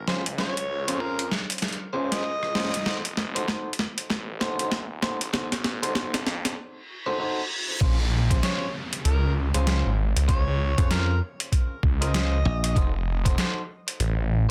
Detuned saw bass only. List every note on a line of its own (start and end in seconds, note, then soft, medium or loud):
0.00 0.24 G#1 medium
0.27 0.55 C#2 loud
0.57 0.85 C#2 medium
0.88 1.30 F2 loud
1.93 2.53 C#2 medium
2.55 2.84 A#1 medium
2.86 3.46 F1 loud
4.10 4.56 A1 loud
4.60 4.88 A1 medium
4.90 5.18 D#1 loud
5.21 5.49 A1 loud
5.52 5.80 A1 loud
5.83 6.24 C2 loud
6.26 6.55 F2 loud
7.81 8.41 A#1 loud
9.05 9.52 C#2 loud
9.55 9.83 C#2 loud
9.85 10.13 G#1 medium
10.16 10.44 C#2 loud
10.47 10.75 C#2 loud
11.83 12.43 C#2 loud
12.76 13.36 F1 loud
14.00 14.46 A1 loud